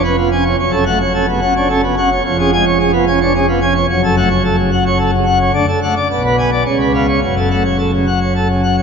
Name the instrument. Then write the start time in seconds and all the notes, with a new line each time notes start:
pipe organ
Already playing: F1 F2
0.04 C#4 B4
0.17 F3 B3
0.32 C#4 G#5
0.44 C#5
0.59 F#1 F#2 C#5
0.71 C#4 A4
0.86 A3 F#5
1.01 C#5
1.14 C#4 A4
1.29 C#3 B3
1.42 C#4 F#5
1.56 D4 C#5
1.69 C#4 A4
1.83 C#3 B3
1.97 C#4 F#5
2.12 C#5
2.25 F1 F2 C#5
2.39 C#4 G#4
2.53 G#3 G#5
2.66 C#5
2.80 C#4 G#4
2.93 F3 B3
3.08 C#4 G#5
3.21 D4 C#5
3.35 C#4 G#4
3.48 F3 B3
3.61 C#4 G#5
3.75 C#5
3.89 F#1 F#2 C#5
4.04 A4
4.17 A3 F#5
4.30 C#5
4.44 A4
4.58 C#3
4.72 F#5
4.86 C#5
4.99 A4
5.14 C#3
5.26 F#5
5.40 C#5
5.53 D2 D3 D5
5.68 A4
5.83 A3 F#5
5.97 D5
6.11 B1 B2 D5
6.25 B4
6.38 B3 G#5
6.52 D5
6.65 C#2 C#3 C#5
6.80 B4
6.95 B3 F5
7.08 C#5
7.22 F#1 F#2 C#5
7.37 A4
7.50 A3 F#5
7.64 C#5
7.79 A4
7.93 C#3
8.07 F#5
8.21 C#5
8.36 A4
8.49 C#3
8.64 F#5
8.77 C#5